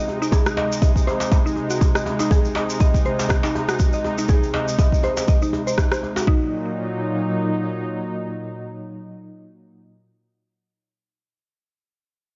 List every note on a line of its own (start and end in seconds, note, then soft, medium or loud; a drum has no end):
0.00 6.23 C3 medium
0.00 6.24 G#3 medium
0.00 6.24 D#4 medium
0.08 djembe tone medium
0.22 0.31 D#4 medium
0.22 maracas medium
0.32 0.45 G#4 medium
0.32 kick loud
0.32 djembe tone medium
0.32 djembe bass medium
0.32 maracas medium
0.46 cross-stick medium
0.46 maracas soft
0.57 0.70 D#5 medium
0.57 djembe slap medium
0.57 djembe tone medium
0.72 maracas medium
0.82 0.94 D#5 medium
0.82 kick loud
0.82 djembe tone medium
0.82 maracas medium
0.96 kick medium
0.96 maracas soft
1.07 1.19 C5 medium
1.07 djembe tone medium
1.20 djembe slap medium
1.20 maracas medium
1.32 1.44 D#5 medium
1.32 kick loud
1.32 djembe tone medium
1.32 maracas medium
1.46 1.55 D#4 medium
1.46 maracas soft
1.56 djembe tone medium
1.70 1.76 F#4 medium
1.70 maracas medium
1.81 kick loud
1.81 djembe tone medium
1.81 maracas medium
1.95 2.05 D#5 medium
1.95 cross-stick medium
1.95 maracas soft
2.06 djembe tone medium
2.19 2.30 D#4 medium
2.19 djembe slap medium
2.19 maracas medium
2.31 2.43 G#4 medium
2.31 kick loud
2.31 djembe tone medium
2.31 djembe bass medium
2.31 maracas medium
2.45 maracas soft
2.55 2.68 D#5 medium
2.55 djembe slap medium
2.55 djembe tone medium
2.70 maracas medium
2.80 2.93 D#5 medium
2.80 kick loud
2.80 djembe tone medium
2.80 maracas medium
2.94 kick medium
2.94 maracas soft
3.05 3.18 C5 medium
3.05 djembe tone medium
3.19 djembe slap medium
3.19 maracas medium
3.29 3.43 D#5 medium
3.29 kick loud
3.29 cross-stick medium
3.29 djembe tone medium
3.29 djembe bass medium
3.29 maracas medium
3.43 3.54 D#4 medium
3.43 djembe slap loud
3.43 maracas soft
3.55 djembe tone medium
3.69 3.75 F#4 medium
3.69 cross-stick medium
3.69 maracas medium
3.79 kick loud
3.79 djembe tone medium
3.79 maracas medium
3.93 4.03 D#5 medium
3.93 maracas soft
4.04 djembe tone medium
4.18 4.28 D#4 medium
4.18 maracas medium
4.28 4.42 G#4 medium
4.28 kick loud
4.28 djembe tone medium
4.28 djembe bass medium
4.28 maracas medium
4.43 maracas soft
4.54 4.66 D#5 medium
4.54 djembe slap medium
4.54 djembe tone medium
4.68 maracas medium
4.79 4.91 D#5 medium
4.79 kick loud
4.79 djembe tone medium
4.79 maracas medium
4.92 kick medium
4.92 maracas soft
5.03 5.16 C5 medium
5.03 djembe tone medium
5.17 djembe slap medium
5.17 maracas medium
5.27 5.41 D#5 medium
5.27 kick loud
5.27 djembe tone medium
5.27 maracas medium
5.42 5.52 D#4 medium
5.42 maracas soft
5.53 djembe tone medium
5.67 5.77 C5 medium
5.67 maracas medium
5.78 kick loud
5.78 cross-stick medium
5.78 djembe tone medium
5.78 maracas medium
5.92 6.02 C5 medium
5.92 cross-stick medium
5.92 maracas soft
6.03 djembe tone medium
6.16 6.27 F#4 medium
6.16 djembe slap medium
6.16 maracas medium
6.27 9.88 A#2 medium
6.27 9.88 F#3 medium
6.27 9.88 D#4 medium
6.27 6.51 D#4 medium
6.27 kick loud